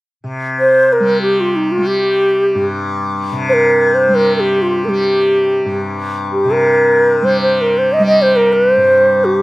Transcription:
0.24 3.32 C3 soft
0.60 0.94 C5 medium
0.93 1.21 A#4 medium
1.00 1.78 G3 soft
1.22 1.42 G4 medium
1.40 1.57 F4 medium
1.56 1.73 D#4 medium
1.72 1.88 F4 medium
1.78 4.08 G3 soft
1.86 2.66 G4 medium
2.55 5.65 G2 medium
3.32 6.44 C3 medium
3.49 3.55 C5 medium
3.54 3.96 A#4 medium
3.94 4.17 C5 medium
4.08 4.87 G3 soft
4.15 4.36 A#4 medium
4.36 4.64 G4 medium
4.36 4.41 A#4 medium
4.62 4.86 F4 medium
4.85 7.22 G3 soft
4.85 4.90 A#4 medium
4.89 5.77 G4 medium
5.65 8.76 G2 medium
6.33 6.54 G4 medium
6.45 9.42 C3 soft
6.53 7.26 A#4 medium
7.22 7.99 G3 soft
7.22 7.40 C5 medium
7.41 7.63 C5 medium
7.61 7.80 A#4 medium
7.78 7.94 C5 medium
7.93 8.06 D#5 medium
7.99 9.42 G3 medium
8.06 8.23 D#5 medium
8.22 8.38 C5 medium
8.36 8.54 A#4 medium
8.53 8.72 B4 medium
8.72 9.26 C5 medium
8.76 9.42 G2 medium
9.25 9.42 G4 medium

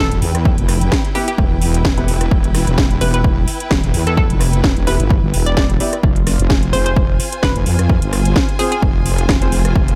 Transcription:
0.00 6.04 E4 medium
0.00 0.20 A4 medium
0.00 6.03 B4 medium
0.00 6.03 G5 medium
0.12 0.20 E1 medium
0.12 closed hi-hat medium
0.22 0.56 E2 medium
0.22 open hi-hat medium
0.35 cross-stick medium
0.35 closed hi-hat medium
0.45 kick loud
0.58 0.90 F1 loud
0.58 closed hi-hat medium
0.69 cross-stick medium
0.69 open hi-hat loud
0.81 closed hi-hat medium
0.92 kick loud
0.92 snare loud
1.05 closed hi-hat soft
1.15 1.25 B3 medium
1.15 1.25 E4 medium
1.15 1.23 G4 medium
1.15 1.25 G4 medium
1.15 1.25 B4 loud
1.15 open hi-hat medium
1.28 1.35 G4 medium
1.28 closed hi-hat medium
1.38 1.83 E1 medium
1.38 kick loud
1.62 open hi-hat loud
1.74 closed hi-hat medium
1.85 2.30 E1 loud
1.85 kick loud
1.85 snare loud
1.98 2.06 B3 medium
1.98 2.06 E4 medium
1.98 2.06 G4 medium
1.98 2.06 B4 loud
1.98 closed hi-hat medium
2.08 open hi-hat loud
2.21 cross-stick medium
2.21 closed hi-hat medium
2.31 2.65 E1 medium
2.31 kick loud
2.44 closed hi-hat soft
2.54 cross-stick medium
2.54 snare soft
2.54 open hi-hat loud
2.67 2.99 E1 loud
2.67 closed hi-hat medium
2.78 kick loud
2.78 snare loud
2.91 closed hi-hat soft
3.01 3.46 E1 medium
3.01 3.16 B3 medium
3.01 3.16 E4 medium
3.01 3.16 G4 medium
3.01 3.09 B4 medium
3.01 3.16 B4 medium
3.01 open hi-hat medium
3.14 3.21 B4 medium
3.14 closed hi-hat medium
3.24 kick loud
3.48 open hi-hat loud
3.60 closed hi-hat medium
3.71 3.82 E1 medium
3.71 kick loud
3.71 snare loud
3.84 3.92 E1 loud
3.84 closed hi-hat soft
3.94 4.28 E2 medium
3.94 open hi-hat loud
4.07 4.14 A4 medium
4.07 cross-stick medium
4.07 closed hi-hat medium
4.17 4.25 A4 medium
4.17 kick loud
4.30 4.62 F1 loud
4.30 closed hi-hat soft
4.41 cross-stick medium
4.41 open hi-hat loud
4.53 closed hi-hat medium
4.64 4.75 E1 medium
4.64 kick loud
4.64 snare loud
4.77 4.98 E1 medium
4.77 closed hi-hat soft
4.87 4.97 B3 medium
4.87 4.97 E4 medium
4.87 4.97 G4 medium
4.87 5.08 B4 medium
4.87 4.97 B4 loud
4.87 snare soft
4.87 open hi-hat medium
5.00 5.21 G1 medium
5.00 closed hi-hat medium
5.10 kick loud
5.23 5.32 G1 medium
5.34 5.79 E1 medium
5.34 open hi-hat loud
5.46 5.53 D5 medium
5.46 closed hi-hat medium
5.57 5.65 D5 medium
5.57 kick loud
5.57 snare loud
5.70 closed hi-hat soft
5.80 5.90 B3 medium
5.80 5.90 E4 medium
5.80 5.90 G4 medium
5.80 5.90 D5 loud
5.80 open hi-hat loud
5.93 cross-stick medium
5.93 closed hi-hat medium
6.03 6.37 F1 medium
6.03 9.95 F4 medium
6.03 kick loud
6.16 closed hi-hat soft
6.27 cross-stick medium
6.27 snare soft
6.27 open hi-hat loud
6.39 6.72 F1 medium
6.39 9.95 C5 medium
6.39 closed hi-hat medium
6.47 9.95 G#5 medium
6.47 kick loud
6.47 snare loud
6.63 closed hi-hat soft
6.73 7.18 F1 medium
6.73 6.88 C4 medium
6.73 6.88 F4 medium
6.73 6.88 G#4 medium
6.73 6.81 C5 medium
6.73 6.88 C5 medium
6.73 open hi-hat medium
6.86 6.93 C5 medium
6.86 closed hi-hat medium
6.96 kick loud
7.20 open hi-hat loud
7.32 closed hi-hat medium
7.43 7.54 F1 loud
7.43 7.64 B4 medium
7.43 kick loud
7.43 snare loud
7.56 7.65 F1 loud
7.56 closed hi-hat soft
7.66 8.00 F2 loud
7.66 open hi-hat loud
7.79 cross-stick medium
7.79 closed hi-hat medium
7.89 kick loud
8.02 8.34 G1 loud
8.02 closed hi-hat medium
8.13 cross-stick medium
8.13 open hi-hat loud
8.25 closed hi-hat medium
8.36 kick loud
8.36 snare loud
8.49 closed hi-hat soft
8.59 8.69 C4 medium
8.59 8.69 F4 medium
8.59 8.67 G#4 medium
8.59 8.69 G#4 medium
8.59 8.69 C5 loud
8.59 open hi-hat medium
8.72 8.79 G#4 medium
8.72 closed hi-hat medium
8.82 9.27 F1 medium
8.82 kick loud
9.06 open hi-hat loud
9.18 closed hi-hat medium
9.29 9.74 F1 medium
9.29 kick loud
9.29 snare loud
9.42 9.50 C4 medium
9.42 9.50 F4 medium
9.42 9.50 G#4 medium
9.42 9.50 C5 loud
9.42 closed hi-hat soft
9.52 open hi-hat medium
9.65 cross-stick medium
9.65 closed hi-hat medium
9.76 9.95 F1 medium
9.76 kick loud
9.88 closed hi-hat soft

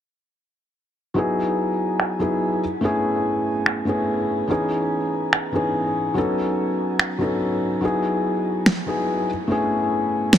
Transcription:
1.14 2.17 F#3 medium
1.14 2.17 B3 medium
1.14 2.18 D#4 medium
1.14 2.18 E4 medium
1.14 2.19 G#4 medium
2.00 finger snap medium
2.19 2.60 F#3 medium
2.19 2.61 B3 medium
2.19 2.61 D#4 medium
2.19 2.61 E4 medium
2.19 2.61 G#4 medium
2.81 3.84 A3 medium
2.81 3.84 B3 medium
2.81 3.85 C#4 medium
2.81 3.85 E4 medium
2.85 3.86 G#4 medium
3.66 finger snap medium
3.85 4.46 A3 medium
3.85 4.47 B3 medium
3.85 4.47 C#4 medium
3.85 4.48 E4 medium
3.89 4.48 G#4 medium
4.47 5.50 E3 medium
4.47 5.51 B3 medium
4.47 5.51 C#4 medium
4.47 5.52 D#4 medium
4.47 5.52 G#4 medium
5.33 finger snap medium
5.52 6.13 E3 medium
5.52 6.13 B3 medium
5.52 6.14 C#4 medium
5.52 6.14 D#4 medium
5.52 6.15 G#4 medium
6.14 7.17 F#3 medium
6.14 7.17 B3 medium
6.14 7.18 C#4 medium
6.14 7.18 D#4 medium
6.14 7.19 A4 medium
7.00 finger snap medium
7.18 7.79 F#3 medium
7.18 7.80 B3 medium
7.18 7.80 C#4 medium
7.18 7.81 D#4 medium
7.18 7.81 A4 medium
7.81 8.84 F#3 medium
7.81 8.84 B3 medium
7.81 8.85 D#4 medium
7.81 8.85 E4 medium
7.85 8.86 G#4 medium
8.66 finger snap medium
8.66 snare loud
8.86 9.27 F#3 medium
8.86 9.27 B3 medium
8.86 9.27 D#4 medium
8.86 9.28 E4 medium
8.86 9.28 G#4 medium
9.48 10.38 A3 medium
9.48 10.38 B3 medium
9.48 10.38 C#4 medium
9.48 10.38 E4 medium
9.52 10.38 G#4 medium
10.33 finger snap medium
10.33 snare loud

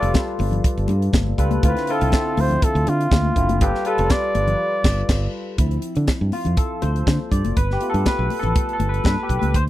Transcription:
0.00 0.12 F1 medium
0.00 1.38 G3 medium
0.00 1.39 F4 medium
0.00 1.39 A4 medium
0.00 1.39 B4 medium
0.00 0.16 D5 loud
0.00 0.76 D5 medium
0.00 closed hi-hat medium
0.14 kick loud
0.14 snare loud
0.14 high conga medium
0.39 0.58 G1 loud
0.39 open hi-hat medium
0.39 muted conga soft
0.51 closed hi-hat soft
0.51 low conga medium
0.64 kick loud
0.64 closed hi-hat medium
0.77 0.86 G1 medium
0.77 closed hi-hat soft
0.88 1.08 G2 medium
0.88 closed hi-hat medium
0.88 muted conga medium
1.02 closed hi-hat soft
1.13 1.32 G1 medium
1.13 kick loud
1.13 snare loud
1.13 high conga medium
1.27 high conga medium
1.38 1.57 C#2 medium
1.38 1.60 G3 medium
1.38 1.60 F4 medium
1.38 1.60 A4 medium
1.38 1.60 B4 medium
1.38 kick medium
1.38 closed hi-hat medium
1.51 closed hi-hat soft
1.51 high conga medium
1.63 1.73 D2 loud
1.63 1.85 D3 medium
1.63 1.85 C4 medium
1.63 1.85 E4 medium
1.63 1.85 F4 medium
1.63 1.93 B4 loud
1.63 kick loud
1.63 closed hi-hat medium
1.77 snare soft
1.77 closed hi-hat soft
1.87 2.74 D3 medium
1.87 2.74 C4 medium
1.87 2.74 E4 medium
1.87 2.74 F4 medium
1.87 closed hi-hat medium
1.91 2.42 A4 loud
2.01 2.10 C2 loud
2.01 closed hi-hat medium
2.12 kick loud
2.12 snare loud
2.12 high conga medium
2.37 2.56 D2 medium
2.37 2.65 C5 loud
2.37 open hi-hat medium
2.37 muted conga soft
2.50 closed hi-hat soft
2.50 low conga medium
2.62 2.91 A4 loud
2.62 kick loud
2.62 closed hi-hat medium
2.62 muted conga soft
2.75 2.84 D2 medium
2.75 closed hi-hat soft
2.87 3.06 D3 loud
2.87 3.61 F4 medium
2.87 closed hi-hat medium
2.87 muted conga medium
3.01 closed hi-hat soft
3.11 3.30 D2 loud
3.11 kick loud
3.11 snare loud
3.11 high conga medium
3.25 high conga medium
3.36 3.62 F#1 medium
3.36 3.58 D3 medium
3.36 3.58 C4 medium
3.36 3.58 E4 medium
3.36 3.58 F4 medium
3.36 kick medium
3.36 closed hi-hat medium
3.49 closed hi-hat medium
3.49 high conga medium
3.60 3.71 G1 loud
3.60 3.82 G3 medium
3.60 3.82 F4 medium
3.60 3.89 G4 medium
3.60 3.83 A4 medium
3.60 3.83 B4 medium
3.60 kick loud
3.60 closed hi-hat medium
3.75 snare soft
3.85 4.60 G3 medium
3.85 4.60 F4 medium
3.85 4.60 A4 medium
3.85 4.13 A4 loud
3.85 4.61 B4 medium
3.85 closed hi-hat medium
3.98 4.08 F1 loud
3.98 closed hi-hat medium
4.10 5.34 D5 loud
4.10 kick loud
4.10 snare loud
4.10 high conga medium
4.35 4.54 G1 medium
4.35 closed hi-hat medium
4.35 muted conga soft
4.47 closed hi-hat medium
4.47 low conga medium
4.84 5.02 G1 loud
4.84 kick loud
4.84 snare loud
4.84 crash medium
5.09 5.26 G1 loud
5.09 kick loud
5.09 snare loud
5.09 crash medium
5.58 5.77 D2 medium
5.58 5.92 F3 medium
5.58 5.92 C4 soft
5.58 5.93 E4 medium
5.58 kick loud
5.58 closed hi-hat medium
5.71 closed hi-hat soft
5.82 closed hi-hat medium
5.95 6.05 D3 medium
5.95 closed hi-hat medium
6.07 kick medium
6.07 snare loud
6.07 high conga medium
6.21 6.30 G2 medium
6.32 6.56 F4 medium
6.32 open hi-hat medium
6.32 muted conga soft
6.45 6.55 F2 medium
6.45 closed hi-hat soft
6.45 low conga medium
6.57 6.81 A4 medium
6.57 kick loud
6.57 closed hi-hat medium
6.82 7.02 D2 medium
6.82 7.33 C5 medium
6.82 closed hi-hat medium
6.82 muted conga medium
6.96 closed hi-hat soft
7.07 7.17 D3 loud
7.07 kick loud
7.07 snare loud
7.07 high conga medium
7.31 7.42 G2 medium
7.31 7.57 D5 medium
7.31 kick medium
7.31 closed hi-hat medium
7.45 7.54 F#1 medium
7.45 closed hi-hat soft
7.45 high conga medium
7.57 7.76 G1 medium
7.57 7.74 B4 loud
7.57 kick loud
7.57 closed hi-hat medium
7.71 7.90 G4 medium
7.71 snare soft
7.80 8.51 A3 medium
7.80 8.51 B3 medium
7.80 8.52 F4 medium
7.80 closed hi-hat medium
7.90 8.07 A4 loud
7.94 8.03 G2 medium
7.94 closed hi-hat medium
8.06 8.40 B4 loud
8.06 kick loud
8.06 snare loud
8.06 high conga medium
8.19 8.28 B1 medium
8.30 open hi-hat medium
8.30 muted conga soft
8.39 8.52 A1 medium
8.39 8.72 A4 medium
8.39 low conga medium
8.44 closed hi-hat soft
8.56 kick loud
8.56 closed hi-hat medium
8.56 muted conga soft
8.69 closed hi-hat soft
8.73 8.90 A4 medium
8.79 8.99 G1 medium
8.79 closed hi-hat medium
8.79 muted conga medium
8.89 9.04 B4 medium
8.94 closed hi-hat soft
9.04 9.15 G2 loud
9.04 9.21 B4 medium
9.04 kick loud
9.04 snare loud
9.04 high conga medium
9.23 9.39 G4 medium
9.29 9.39 B1 medium
9.29 kick medium
9.29 closed hi-hat medium
9.39 9.51 C#2 medium
9.39 9.55 B4 medium
9.39 closed hi-hat medium
9.39 high conga medium
9.54 9.70 D2 medium
9.54 9.63 C5 loud
9.54 kick loud
9.54 closed hi-hat medium

